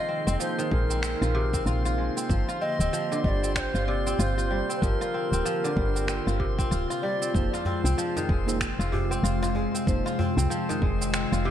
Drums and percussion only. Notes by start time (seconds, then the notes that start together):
0.28 shaker
0.41 shaker
0.59 shaker
0.71 kick
0.91 shaker
1.03 finger snap, shaker
1.23 shaker
1.54 kick, shaker
1.67 shaker
1.86 shaker
2.18 shaker
2.30 kick, shaker
2.49 shaker
2.81 shaker
2.94 shaker
3.12 shaker
3.24 kick
3.44 shaker
3.56 finger snap, kick, shaker
3.75 shaker
4.07 shaker
4.20 shaker
4.39 shaker
4.71 shaker
4.82 kick, shaker
5.02 shaker
5.33 shaker
5.46 shaker
5.65 shaker
5.77 kick
5.96 shaker
6.08 finger snap, shaker
6.28 shaker
6.40 kick
6.59 kick, shaker
6.72 shaker
6.91 shaker
7.23 shaker
7.34 kick, shaker
7.54 djembe slap, shaker
7.65 djembe slap, djembe bass
7.85 djembe tone, shaker
7.99 shaker
8.16 djembe slap, djembe tone, shaker
8.29 kick
8.48 djembe slap, shaker
8.61 finger snap, kick, shaker
8.81 shaker
8.93 djembe tone, djembe bass
9.12 shaker
9.25 shaker
9.43 djembe slap, djembe tone, shaker
9.55 djembe tone
9.75 shaker
9.87 kick, shaker
10.06 djembe slap, shaker
10.19 djembe slap, djembe bass
10.37 djembe tone, shaker
10.52 shaker
10.69 djembe slap, djembe tone, shaker
10.82 kick
11.02 djembe slap, shaker
11.14 finger snap, shaker
11.33 shaker